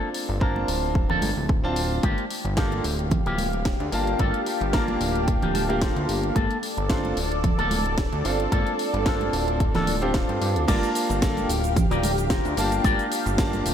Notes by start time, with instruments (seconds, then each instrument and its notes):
Already playing: grand piano C4 D4 F4 A4
0.14 open hi-hat
0.28 analog synth bass G1, muted clean electric guitar stroke
0.40 clean electric guitar A#3 D4 A#4, grand piano C4 D4 F4 A5, kick
0.56 high conga
0.68 analog synth bass D1, open hi-hat
0.95 muted clean electric guitar stroke, kick
1.09 analog synth bass D1, clean electric guitar A#3 D4 A4, low conga
1.22 analog synth bass G1, open hi-hat, high conga
1.37 analog synth bass D1
1.49 muted clean electric guitar stroke, kick
1.64 grand piano C4 D4 F4 A5, muted clean electric guitar stroke
1.76 muted clean electric guitar stroke, open hi-hat
1.91 muted clean electric guitar stroke
2.03 analog synth bass G1, clean electric guitar A#3 F4 G4, analog synth pad G4 F5, kick, closed hi-hat, high conga
2.18 closed hi-hat
2.30 open hi-hat
2.44 analog synth bass G1, muted clean electric guitar stroke, closed hi-hat
2.57 grand piano A#3 D4 F4 A4, clean electric guitar A#3 F4 G4, kick, snare, closed hi-hat
2.72 closed hi-hat, high conga
2.84 analog synth bass D1, open hi-hat
2.99 closed hi-hat
3.11 muted clean electric guitar stroke, kick, closed hi-hat, low conga
3.26 analog synth bass D1, clean electric guitar A#3 F4 G4, closed hi-hat
3.38 open hi-hat, high conga
3.53 closed hi-hat
3.65 muted clean electric guitar stroke, kick, snare, closed hi-hat
3.80 analog synth bass D2, muted clean electric guitar stroke, closed hi-hat
3.92 analog synth bass G1, grand piano A#3 D4 F4 A5, muted clean electric guitar stroke, open hi-hat
4.07 muted clean electric guitar stroke, closed hi-hat
4.19 analog synth bass G1, clean electric guitar A#3 F4 A4, kick, closed hi-hat, high conga
4.34 closed hi-hat
4.46 open hi-hat
4.61 analog synth bass G1, muted clean electric guitar stroke, closed hi-hat
4.73 grand piano A#3 D4 F4 A5, clean electric guitar A#3 F4 A#4, kick, snare, closed hi-hat
4.88 closed hi-hat, high conga
5.00 analog synth bass D1, open hi-hat
5.16 closed hi-hat
5.28 kick, closed hi-hat
5.42 analog synth bass D1, clean electric guitar A#3 F4 G4, closed hi-hat, low conga
5.55 clean electric guitar A5, open hi-hat, high conga
5.69 grand piano A#3 D4 F4 G4, clean electric guitar F5, closed hi-hat
5.81 grand piano A#3 D4 F4 A4, clean electric guitar C5, muted clean electric guitar stroke, kick, snare, closed hi-hat
5.96 analog synth bass D2, muted clean electric guitar stroke, closed hi-hat
6.08 analog synth bass G1, muted clean electric guitar stroke, open hi-hat
6.23 muted clean electric guitar stroke, closed hi-hat
6.35 analog synth bass G1, clean electric guitar A#3 D4 A4, analog synth pad A4 D5, kick, closed hi-hat, high conga
6.51 closed hi-hat
6.63 open hi-hat
6.77 analog synth bass G1, muted clean electric guitar stroke, closed hi-hat
6.89 clean electric guitar A#3 D4 C5, grand piano C4 D4 F4 A4, kick, snare, closed hi-hat
7.05 closed hi-hat, high conga
7.17 analog synth bass D1, open hi-hat
7.32 closed hi-hat
7.44 muted clean electric guitar stroke, kick, closed hi-hat, low conga
7.58 analog synth bass D1, clean electric guitar A#3 D4 A4, closed hi-hat
7.71 open hi-hat, high conga
7.86 closed hi-hat
7.98 muted clean electric guitar stroke, kick, snare, closed hi-hat
8.12 analog synth bass D2, muted clean electric guitar stroke, closed hi-hat
8.24 analog synth bass G1, grand piano C4 D4 F4 A4, muted clean electric guitar stroke, open hi-hat
8.39 muted clean electric guitar stroke, closed hi-hat
8.51 analog synth bass G1, clean electric guitar A#3 D4 A4, kick, closed hi-hat, high conga
8.67 closed hi-hat
8.79 open hi-hat
8.93 analog synth bass G1, muted clean electric guitar stroke, closed hi-hat
9.05 clean electric guitar A#3 D4 A4, grand piano C4 D4 F4 A4, kick, snare, closed hi-hat
9.21 closed hi-hat, high conga
9.33 analog synth bass D1, open hi-hat
9.48 closed hi-hat
9.60 muted clean electric guitar stroke, kick, closed hi-hat
9.74 analog synth bass D1, clean electric guitar A#3 D4 A4, snare, closed hi-hat, low conga
9.87 open hi-hat, high conga
10.01 grand piano C4 D4 F4 G4, closed hi-hat
10.14 grand piano C4 D4 F4 A4, muted clean electric guitar stroke, kick, snare, closed hi-hat
10.29 analog synth bass G2, muted clean electric guitar stroke, closed hi-hat
10.41 analog synth bass G2, muted clean electric guitar stroke, open hi-hat
10.55 analog synth bass D2, muted clean electric guitar stroke, closed hi-hat
10.67 analog synth bass G1, grand piano A#3 D4 F4 A5, clean electric guitar F4 G4 A#4 D5, analog synth pad G4 F5, kick, closed hi-hat, crash, high conga, cabasa, shaker
10.83 closed hi-hat, cabasa, shaker
10.95 open hi-hat, cabasa
11.09 analog synth bass G1, muted clean electric guitar stroke, closed hi-hat, cabasa, shaker
11.22 grand piano A#3 D4 F4 A4, muted clean electric guitar stroke, kick, snare, closed hi-hat, cabasa, shaker
11.37 closed hi-hat, high conga, cabasa, shaker
11.49 analog synth bass D1, open hi-hat, cabasa
11.64 closed hi-hat, cabasa, shaker
11.76 kick, closed hi-hat, low conga, cabasa, shaker
11.91 analog synth bass D1, clean electric guitar F4 G4 A#4 D5, closed hi-hat, cabasa, shaker
12.03 open hi-hat, high conga, cabasa
12.18 closed hi-hat, cabasa, shaker
12.30 clean electric guitar F4 G4 A#4 C5, kick, snare, closed hi-hat, cabasa, shaker
12.45 analog synth bass D2, closed hi-hat, cabasa, shaker
12.57 analog synth bass G1, grand piano A#3 D4 F4 A5, open hi-hat, cabasa
12.72 closed hi-hat, cabasa, shaker
12.84 analog synth bass G1, clean electric guitar F4 G4 A#4 D5, kick, closed hi-hat, high conga, cabasa, shaker
12.99 closed hi-hat, cabasa, shaker
13.12 open hi-hat, cabasa
13.26 analog synth bass G1, muted clean electric guitar stroke, closed hi-hat, cabasa, shaker
13.38 grand piano A#3 D4 F4 A5, kick, snare, closed hi-hat, cabasa, shaker
13.53 closed hi-hat, high conga, cabasa, shaker
13.65 analog synth bass D1, open hi-hat, cabasa